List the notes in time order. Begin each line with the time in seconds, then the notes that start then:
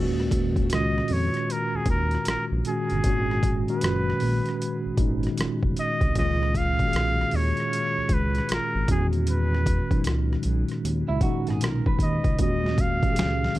Already playing: D#2 A#2 D#3 G#3 C#4 F#4 B4
0.20 cross-stick
0.31 kick, closed hi-hat
0.56 A#2 D#3 G#3 C#4 F4, kick, closed hi-hat
0.65 F#4
0.70 C#2, cross-stick, closed hi-hat
0.74 D#5
0.98 cross-stick
1.08 F2, open hi-hat
1.13 C#5
1.34 cross-stick, closed hi-hat
1.50 A#4, closed hi-hat
1.74 D#2 G#4
1.86 D#2, kick, closed hi-hat
1.90 A#4
2.11 cross-stick, closed hi-hat
2.25 A#1, cross-stick, closed hi-hat
2.29 A#4
2.52 A#1
2.65 A#2 D#3 G#3 C#4 F#4 G#4, closed hi-hat
2.90 G1, closed hi-hat
3.04 G#1 A#2 D#3 G#3 C#4 F#4, kick, closed hi-hat
3.31 cross-stick
3.43 kick, closed hi-hat
3.68 A#2 D#3 G#3 C#4 F#4 B4, closed hi-hat
3.81 F#1, cross-stick, closed hi-hat
4.10 cross-stick
4.20 A#1, open hi-hat
4.46 cross-stick, closed hi-hat
4.62 closed hi-hat
4.86 G#1
4.97 G#1 A#2 D#3 G#3 C#4 D#4, kick, closed hi-hat
5.23 cross-stick, closed hi-hat
5.38 F1, cross-stick, closed hi-hat
5.63 F1, kick
5.77 D#5, closed hi-hat
6.01 C2, kick, closed hi-hat
6.15 C#2 A#2 D#3 G#3 C#4 F4 D#5, kick, closed hi-hat
6.43 cross-stick
6.55 F5, kick, closed hi-hat
6.79 A#2 D#3 G#3 C#4 F#4, kick, closed hi-hat
6.88 G#4
6.93 B1, cross-stick, closed hi-hat
7.21 cross-stick
7.31 D#2, open hi-hat
7.36 C#5
7.57 cross-stick, closed hi-hat
7.73 closed hi-hat
7.97 C#2
8.09 C#2, kick, closed hi-hat
8.14 B4
8.35 cross-stick, closed hi-hat
8.49 G#1, cross-stick, closed hi-hat
8.53 A#4
8.75 G#1
8.88 E2 A#2 D#3 F#3 C#4 F#4 G#4, kick, closed hi-hat
8.96 G#3
9.13 closed hi-hat
9.27 B4, closed hi-hat
9.55 cross-stick
9.66 kick, closed hi-hat
9.91 A#2 D#3 F#3 C#4 D#4, kick, closed hi-hat
9.99 G#3
10.04 C#2, cross-stick, closed hi-hat
10.33 cross-stick
10.43 B1, closed hi-hat
10.68 cross-stick, closed hi-hat
10.84 D#2, closed hi-hat
11.09 C#2 E4
11.21 A#2 D#3 G#3 C#4 D#4 F#4, kick, closed hi-hat
11.47 G#1 G#4, cross-stick, closed hi-hat
11.61 B1 A#4, cross-stick, closed hi-hat
11.86 B4, kick
11.99 D#2, kick, closed hi-hat
12.03 D#5
12.24 C#2, kick, closed hi-hat
12.39 D#2 A#2 D#3 G#3 C#4 F#4 D#5, kick, closed hi-hat, low conga
12.64 snare, high conga
12.78 F5, kick, closed hi-hat
13.03 A#2 D#3 G#3 C#4 G4, kick, closed hi-hat
13.12 G#4, closed hi-hat
13.18 C#2, snare, high conga
13.44 snare
13.55 open hi-hat, muted conga, low conga